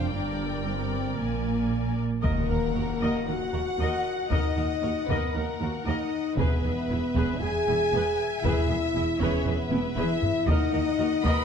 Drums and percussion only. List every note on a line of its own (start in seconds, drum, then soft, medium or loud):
2.24 taiko medium
4.31 taiko medium
5.08 taiko medium
6.38 taiko medium
7.16 taiko medium
8.44 taiko medium
9.21 taiko medium
9.72 taiko high medium
9.97 taiko mid medium
10.22 taiko low medium
10.48 taiko medium
11.25 taiko medium